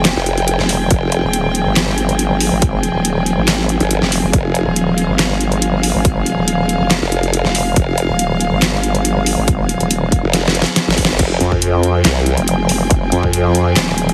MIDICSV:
0, 0, Header, 1, 5, 480
1, 0, Start_track
1, 0, Key_signature, -4, "minor"
1, 0, Tempo, 428571
1, 1015, Time_signature, 4, 2, 24, 8
1, 15832, End_track
2, 0, Start_track
2, 0, Title_t, "String section"
2, 0, Program_c, 0, 48
2, 0, Note_on_c, 0, 53, 74
2, 0, Note_on_c, 0, 60, 71
2, 0, Note_on_c, 0, 68, 73
2, 0, Note_on_c, 0, 79, 81
2, 4834, Note_off_c, 0, 79, 0
2, 4854, Note_on_c, 0, 77, 87
2, 12490, Note_off_c, 0, 53, 0
2, 12490, Note_off_c, 0, 60, 0
2, 12490, Note_off_c, 0, 68, 0
2, 12515, Note_off_c, 0, 77, 0
2, 12535, Note_on_c, 0, 53, 78
2, 12535, Note_on_c, 0, 60, 71
2, 12535, Note_on_c, 0, 68, 86
2, 12535, Note_on_c, 0, 79, 70
2, 15832, Note_off_c, 0, 53, 0
2, 15832, Note_off_c, 0, 60, 0
2, 15832, Note_off_c, 0, 68, 0
2, 15832, Note_off_c, 0, 79, 0
2, 15832, End_track
3, 0, Start_track
3, 0, Title_t, "Wobble bass"
3, 0, Program_c, 1, 39
3, 0, Note_on_c, 1, 29, 102
3, 161, Note_off_c, 1, 29, 0
3, 661, Note_on_c, 1, 29, 101
3, 996, Note_off_c, 1, 29, 0
3, 1381, Note_on_c, 1, 27, 105
3, 1841, Note_off_c, 1, 27, 0
3, 1861, Note_on_c, 1, 31, 101
3, 2801, Note_off_c, 1, 31, 0
3, 2821, Note_on_c, 1, 32, 105
3, 3281, Note_off_c, 1, 32, 0
3, 3301, Note_on_c, 1, 27, 98
3, 3761, Note_off_c, 1, 27, 0
3, 3780, Note_on_c, 1, 32, 99
3, 4240, Note_off_c, 1, 32, 0
3, 4501, Note_on_c, 1, 29, 97
3, 4721, Note_off_c, 1, 29, 0
3, 4741, Note_on_c, 1, 29, 101
3, 4837, Note_off_c, 1, 29, 0
3, 5220, Note_on_c, 1, 27, 100
3, 5680, Note_off_c, 1, 27, 0
3, 5700, Note_on_c, 1, 31, 102
3, 6640, Note_off_c, 1, 31, 0
3, 6660, Note_on_c, 1, 32, 104
3, 7120, Note_off_c, 1, 32, 0
3, 7140, Note_on_c, 1, 27, 98
3, 7600, Note_off_c, 1, 27, 0
3, 7621, Note_on_c, 1, 29, 101
3, 7841, Note_off_c, 1, 29, 0
3, 8340, Note_on_c, 1, 29, 96
3, 8676, Note_off_c, 1, 29, 0
3, 9061, Note_on_c, 1, 27, 98
3, 9521, Note_off_c, 1, 27, 0
3, 9541, Note_on_c, 1, 31, 100
3, 10481, Note_off_c, 1, 31, 0
3, 10501, Note_on_c, 1, 32, 99
3, 10961, Note_off_c, 1, 32, 0
3, 10982, Note_on_c, 1, 27, 101
3, 11441, Note_off_c, 1, 27, 0
3, 12774, Note_on_c, 1, 41, 102
3, 13476, Note_off_c, 1, 41, 0
3, 13860, Note_on_c, 1, 29, 97
3, 14196, Note_off_c, 1, 29, 0
3, 14215, Note_on_c, 1, 29, 97
3, 14676, Note_off_c, 1, 29, 0
3, 14694, Note_on_c, 1, 41, 99
3, 15396, Note_off_c, 1, 41, 0
3, 15414, Note_on_c, 1, 27, 97
3, 15832, Note_off_c, 1, 27, 0
3, 15832, End_track
4, 0, Start_track
4, 0, Title_t, "Wobble bass"
4, 0, Program_c, 2, 39
4, 182, Note_on_c, 2, 29, 103
4, 641, Note_off_c, 2, 29, 0
4, 1016, Note_on_c, 2, 29, 98
4, 1361, Note_off_c, 2, 29, 0
4, 4260, Note_on_c, 2, 31, 100
4, 4480, Note_off_c, 2, 31, 0
4, 4854, Note_on_c, 2, 29, 100
4, 5201, Note_off_c, 2, 29, 0
4, 7860, Note_on_c, 2, 29, 97
4, 8320, Note_off_c, 2, 29, 0
4, 8695, Note_on_c, 2, 29, 98
4, 9041, Note_off_c, 2, 29, 0
4, 11460, Note_on_c, 2, 29, 99
4, 11920, Note_off_c, 2, 29, 0
4, 12181, Note_on_c, 2, 31, 100
4, 12517, Note_off_c, 2, 31, 0
4, 12535, Note_on_c, 2, 29, 103
4, 12757, Note_off_c, 2, 29, 0
4, 13494, Note_on_c, 2, 36, 93
4, 13841, Note_off_c, 2, 36, 0
4, 15832, End_track
5, 0, Start_track
5, 0, Title_t, "Drums"
5, 55, Note_on_c, 9, 38, 127
5, 55, Note_on_c, 9, 39, 91
5, 55, Note_on_c, 9, 42, 86
5, 167, Note_off_c, 9, 38, 0
5, 167, Note_off_c, 9, 39, 0
5, 167, Note_off_c, 9, 42, 0
5, 295, Note_on_c, 9, 42, 54
5, 407, Note_off_c, 9, 42, 0
5, 421, Note_on_c, 9, 42, 37
5, 533, Note_off_c, 9, 42, 0
5, 534, Note_on_c, 9, 42, 85
5, 646, Note_off_c, 9, 42, 0
5, 660, Note_on_c, 9, 38, 39
5, 772, Note_off_c, 9, 38, 0
5, 774, Note_on_c, 9, 46, 89
5, 886, Note_off_c, 9, 46, 0
5, 1014, Note_on_c, 9, 42, 77
5, 1016, Note_on_c, 9, 36, 119
5, 1126, Note_off_c, 9, 42, 0
5, 1128, Note_off_c, 9, 36, 0
5, 1254, Note_on_c, 9, 42, 52
5, 1366, Note_off_c, 9, 42, 0
5, 1494, Note_on_c, 9, 42, 80
5, 1606, Note_off_c, 9, 42, 0
5, 1734, Note_on_c, 9, 42, 52
5, 1846, Note_off_c, 9, 42, 0
5, 1975, Note_on_c, 9, 38, 127
5, 1975, Note_on_c, 9, 39, 92
5, 1975, Note_on_c, 9, 42, 77
5, 2087, Note_off_c, 9, 38, 0
5, 2087, Note_off_c, 9, 39, 0
5, 2087, Note_off_c, 9, 42, 0
5, 2215, Note_on_c, 9, 42, 51
5, 2327, Note_off_c, 9, 42, 0
5, 2341, Note_on_c, 9, 42, 35
5, 2453, Note_off_c, 9, 42, 0
5, 2454, Note_on_c, 9, 42, 77
5, 2566, Note_off_c, 9, 42, 0
5, 2694, Note_on_c, 9, 46, 91
5, 2806, Note_off_c, 9, 46, 0
5, 2934, Note_on_c, 9, 42, 77
5, 2935, Note_on_c, 9, 36, 127
5, 3046, Note_off_c, 9, 42, 0
5, 3047, Note_off_c, 9, 36, 0
5, 3174, Note_on_c, 9, 42, 52
5, 3286, Note_off_c, 9, 42, 0
5, 3414, Note_on_c, 9, 42, 73
5, 3526, Note_off_c, 9, 42, 0
5, 3655, Note_on_c, 9, 42, 49
5, 3767, Note_off_c, 9, 42, 0
5, 3895, Note_on_c, 9, 38, 125
5, 3895, Note_on_c, 9, 39, 88
5, 3895, Note_on_c, 9, 42, 75
5, 4007, Note_off_c, 9, 38, 0
5, 4007, Note_off_c, 9, 39, 0
5, 4007, Note_off_c, 9, 42, 0
5, 4134, Note_on_c, 9, 42, 52
5, 4246, Note_off_c, 9, 42, 0
5, 4261, Note_on_c, 9, 42, 34
5, 4373, Note_off_c, 9, 42, 0
5, 4375, Note_on_c, 9, 42, 80
5, 4487, Note_off_c, 9, 42, 0
5, 4502, Note_on_c, 9, 38, 39
5, 4614, Note_off_c, 9, 38, 0
5, 4615, Note_on_c, 9, 46, 92
5, 4727, Note_off_c, 9, 46, 0
5, 4854, Note_on_c, 9, 42, 74
5, 4855, Note_on_c, 9, 36, 115
5, 4966, Note_off_c, 9, 42, 0
5, 4967, Note_off_c, 9, 36, 0
5, 5095, Note_on_c, 9, 42, 52
5, 5207, Note_off_c, 9, 42, 0
5, 5335, Note_on_c, 9, 42, 74
5, 5447, Note_off_c, 9, 42, 0
5, 5575, Note_on_c, 9, 42, 49
5, 5687, Note_off_c, 9, 42, 0
5, 5814, Note_on_c, 9, 38, 121
5, 5814, Note_on_c, 9, 39, 88
5, 5814, Note_on_c, 9, 42, 74
5, 5926, Note_off_c, 9, 38, 0
5, 5926, Note_off_c, 9, 39, 0
5, 5926, Note_off_c, 9, 42, 0
5, 6055, Note_on_c, 9, 42, 52
5, 6167, Note_off_c, 9, 42, 0
5, 6181, Note_on_c, 9, 42, 35
5, 6293, Note_off_c, 9, 42, 0
5, 6295, Note_on_c, 9, 42, 78
5, 6407, Note_off_c, 9, 42, 0
5, 6534, Note_on_c, 9, 46, 90
5, 6646, Note_off_c, 9, 46, 0
5, 6775, Note_on_c, 9, 36, 116
5, 6775, Note_on_c, 9, 42, 78
5, 6887, Note_off_c, 9, 36, 0
5, 6887, Note_off_c, 9, 42, 0
5, 7015, Note_on_c, 9, 42, 52
5, 7127, Note_off_c, 9, 42, 0
5, 7254, Note_on_c, 9, 42, 82
5, 7366, Note_off_c, 9, 42, 0
5, 7494, Note_on_c, 9, 42, 50
5, 7606, Note_off_c, 9, 42, 0
5, 7735, Note_on_c, 9, 38, 114
5, 7735, Note_on_c, 9, 39, 86
5, 7735, Note_on_c, 9, 42, 81
5, 7847, Note_off_c, 9, 38, 0
5, 7847, Note_off_c, 9, 39, 0
5, 7847, Note_off_c, 9, 42, 0
5, 7975, Note_on_c, 9, 42, 53
5, 8087, Note_off_c, 9, 42, 0
5, 8101, Note_on_c, 9, 42, 36
5, 8213, Note_off_c, 9, 42, 0
5, 8215, Note_on_c, 9, 42, 80
5, 8327, Note_off_c, 9, 42, 0
5, 8341, Note_on_c, 9, 38, 35
5, 8453, Note_off_c, 9, 38, 0
5, 8454, Note_on_c, 9, 46, 98
5, 8566, Note_off_c, 9, 46, 0
5, 8694, Note_on_c, 9, 42, 80
5, 8695, Note_on_c, 9, 36, 115
5, 8806, Note_off_c, 9, 42, 0
5, 8807, Note_off_c, 9, 36, 0
5, 8935, Note_on_c, 9, 42, 53
5, 9047, Note_off_c, 9, 42, 0
5, 9174, Note_on_c, 9, 42, 84
5, 9286, Note_off_c, 9, 42, 0
5, 9414, Note_on_c, 9, 42, 53
5, 9526, Note_off_c, 9, 42, 0
5, 9655, Note_on_c, 9, 38, 114
5, 9655, Note_on_c, 9, 39, 92
5, 9655, Note_on_c, 9, 42, 83
5, 9767, Note_off_c, 9, 38, 0
5, 9767, Note_off_c, 9, 39, 0
5, 9767, Note_off_c, 9, 42, 0
5, 9895, Note_on_c, 9, 42, 57
5, 10007, Note_off_c, 9, 42, 0
5, 10021, Note_on_c, 9, 42, 39
5, 10133, Note_off_c, 9, 42, 0
5, 10135, Note_on_c, 9, 42, 82
5, 10247, Note_off_c, 9, 42, 0
5, 10375, Note_on_c, 9, 46, 99
5, 10487, Note_off_c, 9, 46, 0
5, 10615, Note_on_c, 9, 36, 112
5, 10615, Note_on_c, 9, 42, 83
5, 10727, Note_off_c, 9, 36, 0
5, 10727, Note_off_c, 9, 42, 0
5, 10855, Note_on_c, 9, 42, 58
5, 10967, Note_off_c, 9, 42, 0
5, 10981, Note_on_c, 9, 42, 40
5, 11093, Note_off_c, 9, 42, 0
5, 11095, Note_on_c, 9, 42, 86
5, 11207, Note_off_c, 9, 42, 0
5, 11335, Note_on_c, 9, 36, 60
5, 11335, Note_on_c, 9, 42, 54
5, 11447, Note_off_c, 9, 36, 0
5, 11447, Note_off_c, 9, 42, 0
5, 11575, Note_on_c, 9, 38, 68
5, 11575, Note_on_c, 9, 42, 85
5, 11687, Note_off_c, 9, 38, 0
5, 11687, Note_off_c, 9, 42, 0
5, 11734, Note_on_c, 9, 38, 77
5, 11814, Note_on_c, 9, 42, 58
5, 11846, Note_off_c, 9, 38, 0
5, 11894, Note_on_c, 9, 38, 86
5, 11926, Note_off_c, 9, 42, 0
5, 11940, Note_on_c, 9, 42, 38
5, 12006, Note_off_c, 9, 38, 0
5, 12052, Note_off_c, 9, 42, 0
5, 12053, Note_on_c, 9, 38, 91
5, 12053, Note_on_c, 9, 42, 82
5, 12165, Note_off_c, 9, 38, 0
5, 12165, Note_off_c, 9, 42, 0
5, 12214, Note_on_c, 9, 38, 93
5, 12294, Note_on_c, 9, 46, 96
5, 12295, Note_on_c, 9, 36, 63
5, 12326, Note_off_c, 9, 38, 0
5, 12374, Note_on_c, 9, 38, 109
5, 12406, Note_off_c, 9, 46, 0
5, 12407, Note_off_c, 9, 36, 0
5, 12486, Note_off_c, 9, 38, 0
5, 12534, Note_on_c, 9, 42, 80
5, 12534, Note_on_c, 9, 49, 100
5, 12535, Note_on_c, 9, 36, 124
5, 12646, Note_off_c, 9, 42, 0
5, 12646, Note_off_c, 9, 49, 0
5, 12647, Note_off_c, 9, 36, 0
5, 12774, Note_on_c, 9, 42, 54
5, 12886, Note_off_c, 9, 42, 0
5, 12901, Note_on_c, 9, 36, 63
5, 13013, Note_off_c, 9, 36, 0
5, 13014, Note_on_c, 9, 42, 87
5, 13126, Note_off_c, 9, 42, 0
5, 13254, Note_on_c, 9, 42, 54
5, 13366, Note_off_c, 9, 42, 0
5, 13494, Note_on_c, 9, 38, 121
5, 13494, Note_on_c, 9, 39, 90
5, 13494, Note_on_c, 9, 42, 86
5, 13606, Note_off_c, 9, 38, 0
5, 13606, Note_off_c, 9, 39, 0
5, 13606, Note_off_c, 9, 42, 0
5, 13734, Note_on_c, 9, 42, 57
5, 13846, Note_off_c, 9, 42, 0
5, 13859, Note_on_c, 9, 42, 40
5, 13971, Note_off_c, 9, 42, 0
5, 13974, Note_on_c, 9, 42, 84
5, 14086, Note_off_c, 9, 42, 0
5, 14214, Note_on_c, 9, 46, 94
5, 14326, Note_off_c, 9, 46, 0
5, 14453, Note_on_c, 9, 42, 80
5, 14455, Note_on_c, 9, 36, 124
5, 14565, Note_off_c, 9, 42, 0
5, 14567, Note_off_c, 9, 36, 0
5, 14694, Note_on_c, 9, 42, 54
5, 14806, Note_off_c, 9, 42, 0
5, 14821, Note_on_c, 9, 36, 64
5, 14933, Note_off_c, 9, 36, 0
5, 14934, Note_on_c, 9, 42, 80
5, 15046, Note_off_c, 9, 42, 0
5, 15174, Note_on_c, 9, 42, 56
5, 15286, Note_off_c, 9, 42, 0
5, 15415, Note_on_c, 9, 38, 123
5, 15415, Note_on_c, 9, 39, 98
5, 15415, Note_on_c, 9, 42, 82
5, 15527, Note_off_c, 9, 38, 0
5, 15527, Note_off_c, 9, 39, 0
5, 15527, Note_off_c, 9, 42, 0
5, 15655, Note_on_c, 9, 42, 54
5, 15767, Note_off_c, 9, 42, 0
5, 15781, Note_on_c, 9, 42, 39
5, 15832, Note_off_c, 9, 42, 0
5, 15832, End_track
0, 0, End_of_file